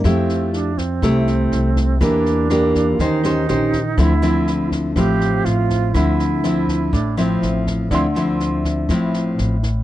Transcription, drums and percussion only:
0.04 kick, cross-stick, snare
0.29 snare
0.53 snare
0.78 kick, snare
1.02 kick, cross-stick, snare
1.27 snare
1.52 snare
1.76 kick, snare
2.01 kick, cross-stick, snare
2.25 snare
2.50 cross-stick, snare
2.75 kick, snare
2.99 kick, snare
3.24 cross-stick, snare
3.48 snare
3.73 kick, snare
3.98 kick, cross-stick, snare
4.22 snare
4.47 snare
4.71 kick, snare
4.96 kick, cross-stick, snare
5.21 snare
5.45 snare
5.70 kick, snare
5.94 kick, cross-stick, snare
6.19 snare
6.44 cross-stick, snare
6.68 kick, snare
6.93 kick, snare
7.18 cross-stick, snare
7.42 snare
7.66 kick, snare
7.91 kick, cross-stick, snare
8.15 snare
8.40 snare
8.64 kick, snare
8.89 kick, cross-stick, snare
9.14 snare
9.38 snare
9.63 kick, snare

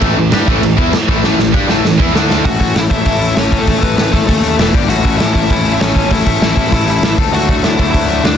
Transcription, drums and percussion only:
0.01 kick, crash
0.32 snare, crash
0.48 kick
0.63 crash
0.78 kick
0.93 snare, crash
1.09 kick
1.24 snare
1.39 snare
1.54 kick
1.69 snare
1.85 snare
2.00 kick
2.15 snare
2.30 snare
2.45 kick, open hi-hat
2.61 kick, open hi-hat
2.76 snare, open hi-hat
2.91 kick, open hi-hat
3.05 kick, open hi-hat
3.21 open hi-hat
3.37 snare, open hi-hat
3.52 kick, open hi-hat
3.67 kick, open hi-hat
3.83 kick, open hi-hat
3.98 snare, open hi-hat
4.13 kick, open hi-hat
4.29 kick, open hi-hat
4.44 open hi-hat
4.59 snare, open hi-hat
4.74 kick, open hi-hat
4.90 open hi-hat
5.05 kick, open hi-hat
5.20 snare, open hi-hat
5.35 kick, open hi-hat
5.50 kick, open hi-hat
5.65 open hi-hat
5.81 snare, open hi-hat
5.96 kick, open hi-hat
6.11 kick, open hi-hat
6.26 kick, open hi-hat
6.42 snare, open hi-hat
6.57 kick, open hi-hat
6.72 kick, open hi-hat
6.87 open hi-hat
7.03 snare, open hi-hat
7.18 kick, open hi-hat
7.34 open hi-hat
7.49 kick, open hi-hat
7.64 snare, open hi-hat
7.79 kick, open hi-hat
7.94 kick, open hi-hat
8.10 open hi-hat
8.25 snare, open hi-hat

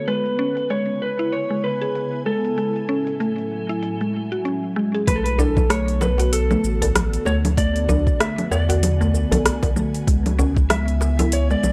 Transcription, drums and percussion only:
0.08 open hi-hat
0.26 open hi-hat
0.57 open hi-hat
0.70 open hi-hat
1.19 open hi-hat
1.33 open hi-hat
1.82 open hi-hat
1.95 open hi-hat
2.45 open hi-hat
2.58 open hi-hat
2.76 open hi-hat
3.07 open hi-hat
3.20 open hi-hat
3.38 open hi-hat
3.69 open hi-hat
3.83 open hi-hat
4.01 open hi-hat
4.32 open hi-hat
4.45 open hi-hat
4.94 open hi-hat
5.07 kick, open hi-hat, low conga, shaker
5.26 open hi-hat
5.38 djembe slap, djembe bass, shaker
5.57 kick, low conga, shaker
5.70 cross-stick, open hi-hat, shaker
5.88 open hi-hat
6.01 cross-stick, djembe slap, low conga, shaker
6.18 open hi-hat, djembe tone, shaker
6.33 open hi-hat, shaker
6.50 djembe slap, low conga, shaker
6.64 shaker
6.82 open hi-hat, djembe bass, shaker
6.96 cross-stick, open hi-hat, low conga, shaker
7.13 open hi-hat, shaker
7.25 djembe slap, djembe tone, shaker
7.45 open hi-hat, low conga, shaker
7.57 kick, open hi-hat, shaker
7.76 open hi-hat
7.89 djembe slap, djembe bass, low conga, shaker
8.07 kick, shaker
8.20 cross-stick, open hi-hat, shaker
8.38 open hi-hat, low conga
8.51 djembe slap, shaker
8.69 open hi-hat, djembe tone, shaker
8.83 open hi-hat, low conga, shaker
9.01 djembe tone, shaker
9.14 djembe tone, shaker
9.31 open hi-hat, djembe slap, djembe bass, low conga, shaker
9.46 cross-stick, open hi-hat, shaker
9.63 kick, open hi-hat, djembe slap, djembe bass, shaker
9.76 low conga, shaker
9.95 open hi-hat, shaker
10.07 kick, open hi-hat, shaker
10.26 open hi-hat, low conga
10.39 djembe slap, djembe bass, shaker
10.57 kick, shaker
10.70 cross-stick, open hi-hat, low conga, shaker
10.88 open hi-hat
11.01 cross-stick, djembe slap, shaker
11.19 open hi-hat, djembe tone, low conga, shaker
11.32 open hi-hat, shaker
11.50 djembe slap, shaker
11.63 low conga, shaker

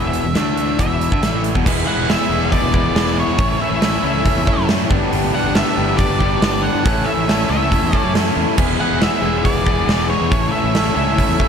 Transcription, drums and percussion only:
0.13 closed hi-hat
0.35 snare, closed hi-hat
0.57 closed hi-hat
0.79 kick, closed hi-hat
1.01 closed hi-hat
1.12 kick
1.23 snare, closed hi-hat
1.44 closed hi-hat
1.55 kick
1.66 kick, crash
2.09 snare, open hi-hat
2.52 kick, open hi-hat
2.74 kick
2.96 snare, open hi-hat
3.38 kick, open hi-hat
3.82 snare, open hi-hat
4.25 kick, open hi-hat
4.47 kick
4.69 snare, open hi-hat
4.91 kick
5.13 open hi-hat
5.55 snare, open hi-hat
5.98 kick, open hi-hat
6.20 kick
6.42 snare, open hi-hat
6.86 kick, open hi-hat
7.29 snare, open hi-hat
7.72 kick, open hi-hat
7.93 kick
8.15 snare, open hi-hat
8.58 kick, crash
9.01 snare, open hi-hat
9.45 kick, open hi-hat
9.67 kick
9.89 snare, open hi-hat
10.32 kick, open hi-hat
10.75 snare, open hi-hat
11.18 kick, open hi-hat
11.40 kick

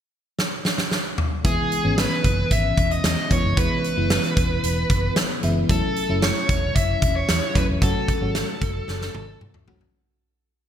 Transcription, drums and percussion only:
0.39 snare
0.65 snare
0.78 snare
0.91 snare
1.18 mid tom
1.45 kick, closed hi-hat
1.72 closed hi-hat
1.98 snare, closed hi-hat
2.24 kick, closed hi-hat
2.51 kick, closed hi-hat
2.77 kick, closed hi-hat
2.91 closed hi-hat
3.04 snare, closed hi-hat
3.31 kick, closed hi-hat
3.57 kick, closed hi-hat
3.84 closed hi-hat
4.10 snare, closed hi-hat
4.24 closed hi-hat
4.37 kick, closed hi-hat
4.63 closed hi-hat
4.90 kick, closed hi-hat
5.16 snare, closed hi-hat
5.43 closed hi-hat
5.69 kick, closed hi-hat
5.96 closed hi-hat
6.22 snare, closed hi-hat
6.49 kick, closed hi-hat
6.76 kick, closed hi-hat
7.02 kick, closed hi-hat
7.29 snare, closed hi-hat
7.55 kick, closed hi-hat
7.82 kick, closed hi-hat
8.08 kick, closed hi-hat
8.35 snare, closed hi-hat
8.61 kick, closed hi-hat
8.88 snare
9.01 snare
9.15 high tom
9.41 mid tom
9.54 mid tom
9.68 floor tom
9.81 floor tom

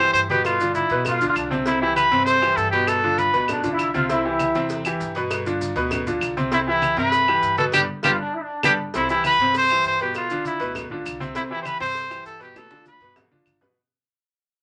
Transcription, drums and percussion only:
0.00 claves
0.14 cowbell, high conga, maracas
0.29 cowbell, high conga, maracas
0.45 cowbell, high conga, claves, maracas
0.60 high conga, maracas
0.75 cowbell, high conga, maracas
0.90 cowbell, high conga, maracas
1.05 cowbell, high conga, low conga, claves, maracas
1.21 high conga, maracas
1.35 cowbell, high conga, claves, maracas
1.51 high conga, maracas
1.66 cowbell, high conga, maracas
1.81 high conga
1.96 cowbell, high conga, claves, maracas
2.12 cowbell, maracas
2.27 cowbell, high conga, maracas
2.43 high conga, claves
2.57 cowbell, high conga, maracas
2.73 cowbell, maracas
2.87 cowbell, high conga, claves, maracas
3.03 high conga
3.18 cowbell, high conga, maracas
3.33 cowbell, high conga, maracas
3.48 cowbell, high conga, low conga, claves, maracas
3.63 high conga, low conga, maracas
3.79 cowbell, high conga, claves, maracas
3.94 high conga, maracas
4.09 cowbell, high conga, maracas
4.25 high conga
4.39 cowbell, high conga, claves, maracas
4.55 cowbell, maracas
4.69 cowbell, high conga, maracas
4.85 high conga, claves, maracas
5.00 cowbell, high conga, maracas
5.15 cowbell, maracas
5.31 cowbell, high conga, claves, maracas
5.46 high conga, maracas
5.61 cowbell, high conga, maracas
5.76 cowbell, high conga, maracas
5.91 cowbell, high conga, low conga, claves, maracas
6.07 high conga, low conga, maracas
6.21 cowbell, high conga, claves, maracas
6.37 high conga, maracas
6.52 cowbell, high conga, maracas
6.67 high conga
6.82 cowbell, high conga, claves, maracas
6.97 cowbell, maracas
7.12 cowbell, high conga, maracas
7.28 high conga, claves
7.43 cowbell, high conga, maracas
7.58 cowbell, high conga, maracas
7.72 cowbell, high conga, claves, maracas
8.03 cowbell, high conga, claves, maracas
8.63 cowbell, high conga, claves, maracas
8.94 cowbell, high conga, maracas
9.09 high conga, maracas
9.24 cowbell, high conga, claves, maracas
9.39 cowbell, maracas
9.54 cowbell, high conga, maracas
9.69 high conga, claves, maracas
9.84 cowbell, high conga, maracas
9.99 cowbell, maracas
10.14 cowbell, high conga, claves, maracas
10.30 high conga, maracas
10.45 cowbell, high conga, maracas
10.60 cowbell, high conga, maracas
10.75 cowbell, high conga, low conga, claves, maracas
10.90 high conga, low conga
11.05 cowbell, high conga, claves, maracas
11.20 high conga, maracas
11.35 cowbell, high conga, maracas
11.50 high conga
11.65 cowbell, high conga, claves, maracas
11.80 cowbell, maracas
11.95 cowbell, high conga, maracas
12.10 high conga, claves, maracas
12.25 cowbell, high conga, maracas
12.41 cowbell, maracas
12.55 cowbell, high bongo, high conga, claves, maracas
12.71 high bongo, high conga
12.85 cowbell, high bongo, high conga, maracas
13.01 cowbell, high conga, maracas
13.16 cowbell, low bongo, high conga, low conga, claves, maracas
13.32 high conga
13.46 cowbell, high conga, claves, maracas
13.61 low bongo, low conga, maracas

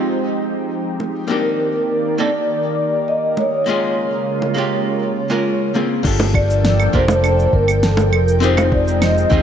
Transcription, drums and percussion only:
1.00 high bongo
3.37 high bongo
4.42 high bongo
5.75 high bongo
6.05 kick, crash, shaker
6.20 high bongo, shaker
6.34 kick, claves
6.50 shaker
6.65 snare, shaker
6.80 claves, shaker
6.94 kick
7.08 high bongo, shaker
7.24 claves, shaker
7.39 shaker
7.53 kick
7.68 claves, shaker
7.83 snare, shaker
7.97 high bongo, shaker
8.13 claves
8.28 shaker
8.43 shaker
8.57 high bongo, claves, shaker
8.72 kick
8.88 shaker
9.02 snare, claves, shaker
9.18 shaker
9.31 kick

